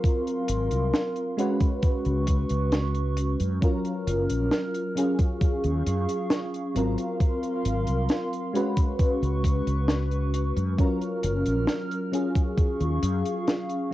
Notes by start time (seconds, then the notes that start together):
Already playing: F#3 C4 F4 A#4 F5 C6
0.04 kick, closed hi-hat
0.27 closed hi-hat
0.48 G#1, closed hi-hat
0.71 C2, closed hi-hat
0.94 snare, closed hi-hat
1.16 closed hi-hat
1.37 G#3 C#4 F#4 B4 C#6, closed hi-hat
1.60 kick, closed hi-hat
1.83 kick, closed hi-hat
2.05 C#2, closed hi-hat
2.27 kick, closed hi-hat
2.49 C#2, closed hi-hat
2.72 snare, closed hi-hat
2.95 closed hi-hat
3.17 closed hi-hat
3.40 F#2, closed hi-hat
3.61 F#3 C#4 F4 A#4 F6, kick, closed hi-hat
3.85 closed hi-hat
4.07 F#1, closed hi-hat
4.29 A#1, closed hi-hat
4.51 snare, closed hi-hat
4.74 closed hi-hat
4.95 F#3 C#4 F4 G#4 F5 C#6, closed hi-hat
5.19 kick, closed hi-hat
5.41 muted fretless electric bass stroke, kick, closed hi-hat
5.64 D#2, closed hi-hat
5.86 F#2, closed hi-hat
6.09 closed hi-hat
6.30 snare, closed hi-hat
6.54 closed hi-hat
6.74 G#1 F#3 C4 F4 A#4 F5 C6, closed hi-hat
6.98 closed hi-hat
7.20 kick, closed hi-hat
7.43 closed hi-hat
7.65 G#1, closed hi-hat
7.87 C2, closed hi-hat
8.09 snare, closed hi-hat
8.33 closed hi-hat
8.53 G#3 C#4 F#4 B4 C#6, closed hi-hat
8.77 kick, closed hi-hat
8.99 kick, closed hi-hat
9.22 C#2, closed hi-hat
9.44 kick, closed hi-hat
9.67 C#2, closed hi-hat
9.88 snare, closed hi-hat
10.11 closed hi-hat
10.34 closed hi-hat
10.56 F#2, closed hi-hat
10.77 F#3 C#4 F4 A#4 F6, kick, closed hi-hat
11.01 closed hi-hat
11.23 F#1, closed hi-hat
11.46 A#1, closed hi-hat
11.67 snare, closed hi-hat
11.91 closed hi-hat
12.12 F#3 C#4 F4 G#4 F5 C#6, closed hi-hat
12.35 kick, closed hi-hat
12.58 muted fretless electric bass stroke, kick, closed hi-hat
12.80 D#2, closed hi-hat
13.02 F#2, closed hi-hat
13.25 closed hi-hat
13.48 snare, closed hi-hat
13.69 closed hi-hat